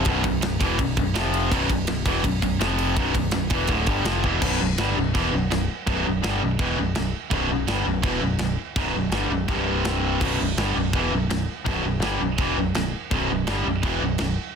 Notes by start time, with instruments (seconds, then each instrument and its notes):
0.05 picked electric bass B0, distorted electric guitar B1 F#2, kick, ride
0.09 distorted electric guitar B2
0.24 picked electric bass B0, distorted electric guitar B1 F#2, kick, ride
0.42 picked electric bass B0, distorted electric guitar B1 F#2, snare, ride
0.61 picked electric bass E1, distorted electric guitar E2 B2 E3, kick, ride
0.79 picked electric bass B0, distorted electric guitar B1 F#2, kick, ride
0.97 picked electric bass B0, distorted electric guitar B1 F#2, kick, ride
1.15 picked electric bass F1, distorted electric guitar F2 C3 F3, snare, ride
1.34 ride
1.50 picked electric bass B0, distorted electric guitar B1 F#2 B2, kick, ride
1.70 picked electric bass B0, distorted electric guitar B1 F#2, kick, ride
1.87 picked electric bass B0, distorted electric guitar B1 F#2, snare, ride
2.06 picked electric bass E1, distorted electric guitar E2 B2 E3, kick, ride
2.24 picked electric bass B0, distorted electric guitar B1 F#2, kick, ride
2.42 picked electric bass B0, distorted electric guitar B1 F#2, kick, ride
2.59 picked electric bass F1, distorted electric guitar F2 C3 F3, snare, ride
2.78 ride
2.95 picked electric bass B0, distorted electric guitar B1 F#2 B2, kick, ride
3.15 picked electric bass B0, distorted electric guitar B1 F#2, kick, ride
3.31 picked electric bass B0, distorted electric guitar B1 F#2, snare, ride
3.50 picked electric bass E1, distorted electric guitar E2 B2 E3, kick, ride
3.67 picked electric bass D1, distorted electric guitar D2 A2 D3, kick, ride
3.87 picked electric bass G1, distorted electric guitar G2 D3 G3, kick, ride
4.04 picked electric bass F1, distorted electric guitar F2 C3 F3, snare, ride
4.24 picked electric bass E1, distorted electric guitar E2 B2 E3, kick
4.42 picked electric bass B0, distorted electric guitar B1 F#2 B2, kick, crash, china
4.61 picked electric bass B0, distorted electric guitar B1 F#2
4.78 picked electric bass G1, distorted electric guitar G2 D3 G3, snare, china
4.96 picked electric bass B0, distorted electric guitar B1 F#2
5.15 picked electric bass E1, distorted electric guitar E2 B2 E3, kick, china
5.33 picked electric bass B0, distorted electric guitar B1 F#2
5.51 picked electric bass B0, distorted electric guitar B1 F#2, snare, china
5.87 picked electric bass B0, distorted electric guitar B1 F#2 B2, kick, china
6.05 picked electric bass B0, distorted electric guitar B1 F#2
6.22 picked electric bass G1, distorted electric guitar G2 D3 G3, snare, china
6.43 picked electric bass B0, distorted electric guitar B1 F#2
6.59 picked electric bass E1, distorted electric guitar E2 B2 E3, kick, china
6.78 picked electric bass B0, distorted electric guitar B1 F#2
6.95 picked electric bass B0, distorted electric guitar B1 F#2, snare, china
7.31 picked electric bass B0, distorted electric guitar B1 F#2 B2, kick, china
7.49 picked electric bass B0, distorted electric guitar B1 F#2
7.68 picked electric bass G1, distorted electric guitar G2 D3 G3, snare, china
7.85 picked electric bass B0, distorted electric guitar B1 F#2
8.03 picked electric bass E1, distorted electric guitar E2 B2 E3, kick, china
8.21 picked electric bass B0, distorted electric guitar B1 F#2
8.38 picked electric bass B0, snare, china
8.42 distorted electric guitar B1 F#2
8.76 picked electric bass B0, distorted electric guitar B1 F#2 B2, kick, china
8.93 picked electric bass B0, distorted electric guitar B1 F#2
9.11 picked electric bass G1, distorted electric guitar G2 D3 G3, snare, china
9.29 picked electric bass B0, distorted electric guitar B1 F#2
9.48 picked electric bass C1, distorted electric guitar C2 G2 C3, kick, china
9.85 snare, china
10.21 picked electric bass B0, distorted electric guitar B1 F#2 B2, kick, china, crash
10.40 picked electric bass B0, distorted electric guitar B1 F#2
10.56 picked electric bass G1, distorted electric guitar G2 D3 G3, snare, china
10.75 picked electric bass B0, distorted electric guitar B1 F#2
10.93 picked electric bass E1, distorted electric guitar E2 B2 E3, kick, china
11.12 picked electric bass B0, distorted electric guitar B1 F#2
11.29 picked electric bass B0, distorted electric guitar B1 F#2, snare, china
11.65 picked electric bass B0, distorted electric guitar B1 F#2 B2, kick, china
11.83 picked electric bass B0, distorted electric guitar B1 F#2
12.01 picked electric bass G1, distorted electric guitar G2 D3 G3, snare, china
12.19 picked electric bass B0, distorted electric guitar B1 F#2
12.38 picked electric bass E1, distorted electric guitar E2 B2 E3, kick, china
12.55 picked electric bass B0, distorted electric guitar B1 F#2
12.75 picked electric bass B0, distorted electric guitar B1 F#2, snare, china
13.11 picked electric bass B0, distorted electric guitar B1 F#2 B2, kick, china
13.29 picked electric bass B0, distorted electric guitar B1 F#2
13.47 picked electric bass G1, distorted electric guitar G2 D3 G3, snare, china
13.63 picked electric bass B0, distorted electric guitar B1 F#2
13.83 picked electric bass E1, distorted electric guitar E2 B2 E3, kick, china
14.00 picked electric bass B0, distorted electric guitar B1 F#2
14.18 picked electric bass B0, distorted electric guitar B1 F#2, snare, china